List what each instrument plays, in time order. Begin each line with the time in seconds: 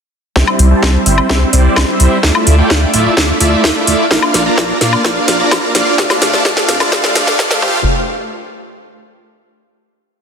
0.36 sub bass C2, supersaw synth G3 C4 E4 C5 E5, kick, snare
0.47 high woodblock
0.59 sub bass C2, open hi-hat
0.71 supersaw synth G3 C4 E4 C5 A5
0.83 sub bass C2, kick, snare
1.06 sub bass G1, supersaw synth G3 C4 E4 C5 E5, open hi-hat
1.18 high woodblock
1.29 sub bass C2, supersaw synth G3 C4 E4 C5 E5, kick, snare
1.53 sub bass C2, supersaw synth G3 C4 E4 C5 D5, open hi-hat
1.76 sub bass C2, kick, snare, high woodblock
1.88 supersaw synth G3 C4 E4 C5 E5
2.00 sub bass C2, open hi-hat
2.23 sub bass D2, supersaw synth A3 E4 F4 D5 E5, kick, snare
2.35 high woodblock
2.47 sub bass D2, open hi-hat
2.58 supersaw synth A3 E4 F4 D5 G5
2.70 sub bass D2, kick, snare
2.94 sub bass D1, supersaw synth A3 E4 F4 D5 E5, open hi-hat
3.17 sub bass D2, supersaw synth A3 E4 F4 D5 E5, kick, snare
3.40 sub bass D2, supersaw synth A3 E4 F4 D5 E5, open hi-hat
3.64 sub bass D2, kick, snare
3.76 supersaw synth A3 E4 F4 D5 E5
3.87 sub bass D2, open hi-hat
4.11 sub bass A#1, supersaw synth A#3 D4 F4 D5 F5, kick, snare
4.22 high woodblock
4.34 sub bass A#1, snare, open hi-hat
4.46 supersaw synth A#3 D4 F4 D5 A#5
4.58 sub bass A#1, kick, snare
4.81 sub bass A#2, supersaw synth A#3 D4 F4 D5 F5, snare, open hi-hat
4.93 high woodblock
5.04 sub bass A#1, supersaw synth A#3 D4 F4 D5 F5, kick, snare
5.28 sub bass A#1, snare, open hi-hat
5.40 supersaw synth A#3 D4 F4 D5 A#5
5.51 sub bass A#1, kick, snare, high woodblock
5.75 sub bass A#1, supersaw synth A#3 D4 F4 D5 F5, snare, open hi-hat
5.98 sub bass F1, supersaw synth A3 D4 F4 D5 F5, kick, snare
6.10 snare, high woodblock
6.22 sub bass F1, snare, open hi-hat
6.33 supersaw synth A3 D4 F4 D5 A5, snare
6.45 sub bass F1, supersaw synth A3 D4 F4 D5 F5, kick, snare
6.57 snare
6.68 sub bass F2, snare, open hi-hat
6.80 supersaw synth A3 D4 F4 D5 A5, snare, high woodblock
6.92 sub bass F1, supersaw synth A3 D4 F4 D5 F5, kick, snare
7.04 snare
7.15 sub bass F1, supersaw synth A3 D4 F4 D5 F5, snare, open hi-hat
7.27 snare
7.39 sub bass F1, supersaw synth A3 D4 F4 D5 F5, kick, snare
7.51 snare
7.62 sub bass F1, supersaw synth A3 F4 G4 C5 F5, kick